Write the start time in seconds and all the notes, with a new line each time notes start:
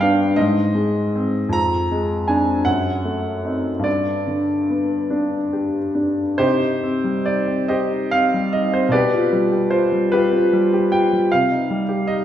Already playing: G2 G3 G5
0.01 B3 D4 F5
0.36 G#2 D#5
0.75 G#3
1.15 C4
1.49 F2 A#5
1.92 G#3
2.28 C4 D4 G#5
2.65 F#2 F#5
3.05 A3
3.45 C4 D#4
3.79 G2
3.84 D5
4.27 D3
4.70 B3
5.10 D4
5.53 G4
5.95 D4
6.38 C3 D#4 G4 C5
6.62 D#4
6.83 C4
7.04 G3
7.26 D#4 D5
7.48 C4
7.68 G4 C5 D#5
7.91 D#4
8.11 C4 F5
8.34 G3
8.53 D#4 D#5
8.73 C4 C5
8.89 B2 D5
8.93 G4 B4
9.13 F4
9.32 G3
9.52 G4
9.71 F4 C5
9.92 G3
10.12 F4 G4 B4
10.33 F4
10.53 G3
10.74 G4
10.92 F4 G5
11.13 G3
11.32 C3 F5
11.52 D#4
11.70 G3
11.89 G4
12.07 D#4 D#5